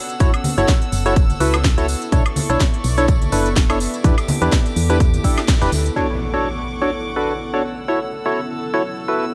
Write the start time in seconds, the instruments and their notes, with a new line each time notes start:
Already playing: ambient pad B3 C#4, violin section A4 F#5 E6
0.09 closed hi-hat, tambourine
0.20 fm bass F#1, synth stab E4 F#4 A4 C#5, kick, closed hi-hat, tambourine
0.26 ambient pad E4 A4
0.34 closed hi-hat, high woodblock
0.44 open hi-hat, tambourine, high conga
0.58 fm bass F#1, synth stab E4 F#4 A4 C#5, closed hi-hat, tambourine
0.68 kick, snare, closed hi-hat, tambourine
0.82 closed hi-hat
0.92 fm bass F#1, open hi-hat, tambourine
1.05 synth stab E4 F#4 A4 C#5, closed hi-hat, tambourine
1.16 kick, closed hi-hat, tambourine
1.30 closed hi-hat, tambourine, high conga
1.40 fm bass C#2, synth stab E4 F#4 A4 B4, open hi-hat, tambourine
1.54 closed hi-hat, tambourine, high woodblock
1.64 kick, snare, closed hi-hat, tambourine
1.78 synth stab E4 F#4 A4 C#5, closed hi-hat, tambourine
1.88 open hi-hat, tambourine
2.02 closed hi-hat, tambourine
2.12 fm bass B1, synth stab D4 E4 A4 C#5, violin section D5 E5 C#6, kick, closed hi-hat, tambourine
2.26 closed hi-hat, high woodblock
2.36 open hi-hat, tambourine, high conga
2.50 fm bass B1, synth stab D4 E4 A4 C#5, closed hi-hat, tambourine
2.60 kick, snare, closed hi-hat, tambourine
2.74 closed hi-hat
2.84 fm bass B1, open hi-hat, tambourine
2.89 ambient pad D5
2.97 synth stab D4 E4 A4 C#5, closed hi-hat, tambourine
3.08 kick, closed hi-hat, tambourine
3.21 closed hi-hat, tambourine, high conga
3.32 fm bass F#1, synth stab D4 E4 A4 B4, open hi-hat, tambourine
3.46 closed hi-hat, tambourine
3.56 kick, snare, closed hi-hat, tambourine
3.70 synth stab D4 E4 A4 C#5, closed hi-hat, tambourine, high woodblock
3.80 open hi-hat, tambourine
3.94 closed hi-hat, tambourine
4.04 fm bass E2, synth stab D4 E4 G4 B4, violin section G4 D6, kick, closed hi-hat, tambourine
4.18 closed hi-hat, tambourine, high woodblock
4.28 open hi-hat, tambourine, high conga
4.42 fm bass E2, synth stab D4 E4 G4 B4, closed hi-hat, tambourine
4.51 kick, snare, closed hi-hat, tambourine
4.66 closed hi-hat, tambourine
4.76 fm bass E2, open hi-hat, tambourine
4.90 synth stab D4 E4 G4 B4, closed hi-hat, tambourine
5.00 kick, closed hi-hat, tambourine
5.14 closed hi-hat, tambourine, high conga
5.24 synth stab D4 E4 G4 A4, kick, open hi-hat, tambourine
5.38 snare, closed hi-hat, tambourine, high woodblock
5.48 kick, snare, closed hi-hat, tambourine
5.61 fm bass E1, synth stab D4 E4 G4 B4, closed hi-hat, tambourine
5.72 fm bass D2, open hi-hat, tambourine
5.86 closed hi-hat, tambourine
5.96 ambient pad D3, synth stab D4 F#4 A4 C#5, violin section F#5 C#6 D6, impact, shaker
6.34 synth stab D4 F#4 A4 C#5
6.72 ambient pad C#4
6.82 synth stab D4 F#4 A4 C#5
7.16 synth stab D4 F#4 A4 B4
7.54 synth stab D4 F#4 A4 C#5
7.64 ambient pad F#3, violin section A4 E6
7.88 synth stab E4 F#4 A4 C#5
8.26 synth stab E4 F#4 A4 C#5
8.74 synth stab E4 F#4 A4 C#5
9.08 synth stab E4 F#4 A4 B4